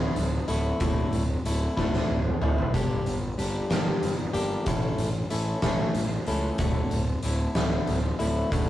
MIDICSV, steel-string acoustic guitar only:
0, 0, Header, 1, 2, 480
1, 0, Start_track
1, 0, Tempo, 642398
1, 607, Time_signature, 6, 3, 24, 8
1, 6497, End_track
2, 0, Start_track
2, 0, Title_t, "Steel-string acoustic guitar"
2, 0, Program_c, 0, 25
2, 0, Note_on_c, 0, 45, 71
2, 0, Note_on_c, 0, 50, 72
2, 0, Note_on_c, 0, 57, 71
2, 0, Note_on_c, 0, 64, 75
2, 196, Note_off_c, 0, 64, 0
2, 197, Note_off_c, 0, 57, 0
2, 198, Note_off_c, 0, 50, 0
2, 201, Note_off_c, 0, 45, 0
2, 359, Note_on_c, 0, 64, 72
2, 363, Note_on_c, 0, 57, 73
2, 366, Note_on_c, 0, 50, 59
2, 368, Note_on_c, 0, 45, 63
2, 591, Note_off_c, 0, 45, 0
2, 595, Note_off_c, 0, 50, 0
2, 597, Note_off_c, 0, 64, 0
2, 599, Note_off_c, 0, 57, 0
2, 600, Note_on_c, 0, 45, 78
2, 604, Note_on_c, 0, 50, 81
2, 606, Note_on_c, 0, 64, 78
2, 608, Note_on_c, 0, 57, 89
2, 916, Note_off_c, 0, 45, 0
2, 918, Note_off_c, 0, 50, 0
2, 919, Note_off_c, 0, 64, 0
2, 920, Note_off_c, 0, 57, 0
2, 1082, Note_on_c, 0, 45, 62
2, 1087, Note_on_c, 0, 50, 70
2, 1087, Note_on_c, 0, 57, 64
2, 1091, Note_on_c, 0, 64, 68
2, 1311, Note_off_c, 0, 64, 0
2, 1312, Note_off_c, 0, 57, 0
2, 1315, Note_off_c, 0, 50, 0
2, 1319, Note_off_c, 0, 45, 0
2, 1320, Note_on_c, 0, 64, 85
2, 1321, Note_on_c, 0, 57, 69
2, 1324, Note_on_c, 0, 50, 71
2, 1328, Note_on_c, 0, 45, 63
2, 1636, Note_off_c, 0, 64, 0
2, 1637, Note_off_c, 0, 57, 0
2, 1638, Note_off_c, 0, 50, 0
2, 1640, Note_off_c, 0, 45, 0
2, 1804, Note_on_c, 0, 64, 66
2, 1809, Note_on_c, 0, 57, 63
2, 1811, Note_on_c, 0, 50, 68
2, 1813, Note_on_c, 0, 45, 59
2, 2042, Note_off_c, 0, 50, 0
2, 2044, Note_off_c, 0, 57, 0
2, 2045, Note_on_c, 0, 55, 76
2, 2046, Note_off_c, 0, 64, 0
2, 2047, Note_on_c, 0, 58, 80
2, 2048, Note_on_c, 0, 62, 78
2, 2051, Note_off_c, 0, 45, 0
2, 2052, Note_on_c, 0, 67, 87
2, 2358, Note_off_c, 0, 55, 0
2, 2360, Note_off_c, 0, 58, 0
2, 2360, Note_off_c, 0, 62, 0
2, 2362, Note_off_c, 0, 67, 0
2, 2523, Note_on_c, 0, 55, 66
2, 2525, Note_on_c, 0, 58, 70
2, 2531, Note_on_c, 0, 62, 63
2, 2531, Note_on_c, 0, 67, 78
2, 2755, Note_off_c, 0, 67, 0
2, 2759, Note_off_c, 0, 62, 0
2, 2762, Note_off_c, 0, 55, 0
2, 2762, Note_off_c, 0, 58, 0
2, 2764, Note_on_c, 0, 67, 77
2, 2768, Note_on_c, 0, 62, 74
2, 2771, Note_on_c, 0, 55, 60
2, 2771, Note_on_c, 0, 58, 63
2, 3078, Note_off_c, 0, 67, 0
2, 3080, Note_off_c, 0, 62, 0
2, 3081, Note_off_c, 0, 55, 0
2, 3081, Note_off_c, 0, 58, 0
2, 3238, Note_on_c, 0, 67, 78
2, 3242, Note_on_c, 0, 62, 73
2, 3244, Note_on_c, 0, 58, 70
2, 3247, Note_on_c, 0, 55, 66
2, 3478, Note_off_c, 0, 55, 0
2, 3481, Note_on_c, 0, 57, 83
2, 3483, Note_off_c, 0, 67, 0
2, 3484, Note_off_c, 0, 58, 0
2, 3484, Note_off_c, 0, 62, 0
2, 3487, Note_on_c, 0, 61, 73
2, 3487, Note_on_c, 0, 64, 76
2, 3492, Note_on_c, 0, 69, 91
2, 3796, Note_off_c, 0, 57, 0
2, 3799, Note_off_c, 0, 61, 0
2, 3799, Note_off_c, 0, 64, 0
2, 3802, Note_off_c, 0, 69, 0
2, 3962, Note_on_c, 0, 57, 65
2, 3964, Note_on_c, 0, 61, 70
2, 3966, Note_on_c, 0, 64, 71
2, 3969, Note_on_c, 0, 69, 76
2, 4194, Note_off_c, 0, 69, 0
2, 4195, Note_off_c, 0, 64, 0
2, 4196, Note_off_c, 0, 61, 0
2, 4201, Note_off_c, 0, 57, 0
2, 4203, Note_on_c, 0, 69, 89
2, 4204, Note_on_c, 0, 64, 83
2, 4205, Note_on_c, 0, 61, 68
2, 4210, Note_on_c, 0, 57, 73
2, 4517, Note_off_c, 0, 64, 0
2, 4517, Note_off_c, 0, 69, 0
2, 4518, Note_off_c, 0, 61, 0
2, 4520, Note_off_c, 0, 57, 0
2, 4688, Note_on_c, 0, 69, 73
2, 4691, Note_on_c, 0, 64, 68
2, 4693, Note_on_c, 0, 57, 60
2, 4694, Note_on_c, 0, 61, 60
2, 4923, Note_off_c, 0, 57, 0
2, 4925, Note_off_c, 0, 64, 0
2, 4925, Note_on_c, 0, 45, 74
2, 4927, Note_off_c, 0, 69, 0
2, 4929, Note_off_c, 0, 61, 0
2, 4929, Note_on_c, 0, 50, 75
2, 4932, Note_on_c, 0, 57, 81
2, 4934, Note_on_c, 0, 64, 90
2, 5238, Note_off_c, 0, 45, 0
2, 5240, Note_off_c, 0, 50, 0
2, 5241, Note_off_c, 0, 57, 0
2, 5242, Note_off_c, 0, 64, 0
2, 5405, Note_on_c, 0, 45, 65
2, 5409, Note_on_c, 0, 50, 73
2, 5411, Note_on_c, 0, 57, 68
2, 5413, Note_on_c, 0, 64, 74
2, 5633, Note_off_c, 0, 64, 0
2, 5638, Note_off_c, 0, 57, 0
2, 5639, Note_off_c, 0, 50, 0
2, 5642, Note_on_c, 0, 64, 82
2, 5643, Note_off_c, 0, 45, 0
2, 5647, Note_on_c, 0, 57, 78
2, 5648, Note_on_c, 0, 50, 81
2, 5652, Note_on_c, 0, 45, 65
2, 5956, Note_off_c, 0, 64, 0
2, 5958, Note_off_c, 0, 57, 0
2, 5959, Note_off_c, 0, 50, 0
2, 5961, Note_off_c, 0, 45, 0
2, 6119, Note_on_c, 0, 64, 74
2, 6121, Note_on_c, 0, 50, 70
2, 6123, Note_on_c, 0, 57, 70
2, 6126, Note_on_c, 0, 45, 61
2, 6350, Note_off_c, 0, 45, 0
2, 6354, Note_off_c, 0, 50, 0
2, 6356, Note_off_c, 0, 57, 0
2, 6359, Note_off_c, 0, 64, 0
2, 6359, Note_on_c, 0, 45, 69
2, 6363, Note_on_c, 0, 50, 80
2, 6365, Note_on_c, 0, 57, 74
2, 6368, Note_on_c, 0, 64, 79
2, 6497, Note_off_c, 0, 45, 0
2, 6497, Note_off_c, 0, 50, 0
2, 6497, Note_off_c, 0, 57, 0
2, 6497, Note_off_c, 0, 64, 0
2, 6497, End_track
0, 0, End_of_file